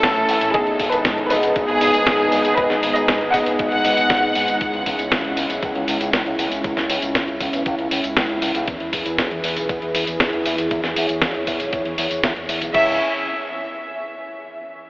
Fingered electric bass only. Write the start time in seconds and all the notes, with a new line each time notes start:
0.03 A1
0.16 A1
0.28 A1
0.41 A1
0.54 G#1
0.67 G#1
0.80 G#1
0.92 G#1
1.05 G#2
1.18 G#1
1.30 G#1
1.43 F#1
1.56 G#1
1.69 G#1
1.81 G#1
1.94 G#1
2.07 G#1
2.19 G#1
2.32 G#1
2.45 G#1
2.58 G#1
2.70 G#1
2.83 G#1
2.96 G#1
3.09 G#2
3.21 G#1
3.34 G#1
3.47 F#1
3.59 G#1
3.72 G#1
3.85 G#1
3.97 G#1
4.10 G#1
4.23 G#2
4.35 G#2
4.48 G#1
4.61 C#2
4.73 C#2
4.86 C#2
4.99 C#2
5.12 G#1
5.24 C#2
5.37 C#2
5.50 B1
5.63 C#2
5.75 C#2
5.88 C#2
6.00 C#2
6.14 C#2
6.26 C#2
6.39 C#2
6.51 C#2
6.64 C#2
6.77 C#2
6.90 C#2
7.02 C#2
7.15 G#1
7.28 C#2
7.41 C#2
7.53 B1
7.66 C#2
7.79 C#2
7.91 C#2
8.04 C#2
8.17 C#2
8.29 C#2
8.42 C#2
8.55 C#2
8.68 E2
8.80 E2
8.93 E2
9.06 E2
9.19 E1
9.31 E2
9.44 E2
9.57 B1
9.69 E2
9.82 E2
9.95 E2
10.08 E2
10.20 E2
10.33 E2
10.46 E2
10.58 E2
10.71 E2
10.84 E2
10.97 E2
11.09 E2
11.22 E1
11.35 E2
11.47 E2
11.60 B1
11.73 E2
11.85 E2
11.98 E2
12.11 E2
12.24 E2
12.36 E2
12.49 E2
12.62 B1
12.75 C#2